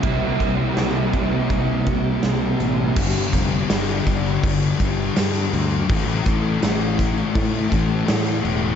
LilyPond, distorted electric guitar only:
\new Staff \with { instrumentName = "Distorted electric guitar" } { \clef bass \time 4/4 \key g \dorian \tempo 4 = 82 <c g c'>4. <c g c'>2~ <c g c'>8 | <g, d g>8 <d g>8 <g, d g>4. <d g>8 <g, d g>8 <d g>8 | <a, e a>8 <e a>8 <a, e a>4. <e a>8 <a, e a>8 <e a>8 | }